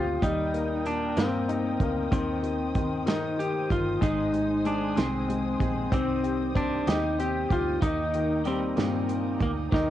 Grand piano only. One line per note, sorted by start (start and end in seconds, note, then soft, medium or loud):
0.00 0.25 C4 medium
0.00 0.25 G4 medium
0.22 2.08 G3 medium
0.54 1.15 A#3 medium
0.85 2.08 A#2 medium
1.17 1.80 A#3 medium
1.49 2.10 D#4 medium
1.81 2.12 A#3 medium
2.11 2.41 D#3 medium
2.43 2.74 D#3 medium
2.75 3.05 D#3 medium
3.06 3.36 D#3 medium
3.38 3.68 D#3 medium
3.70 4.01 D#3 medium
4.01 4.31 G#3 medium
4.33 4.64 G#3 medium
4.65 4.95 G#3 medium
4.96 5.27 G#3 medium
5.28 5.58 G#3 medium
5.59 5.90 G#3 medium
5.92 6.53 C4 medium
6.23 6.86 G4 medium
6.55 7.17 C4 medium
6.88 7.49 G4 medium
7.19 7.80 C4 medium
7.51 7.81 G4 medium
7.82 9.68 D#4 medium
8.15 9.37 D#3 medium
8.45 9.68 G3 medium
8.76 9.69 A#2 medium
9.72 9.90 D#3 medium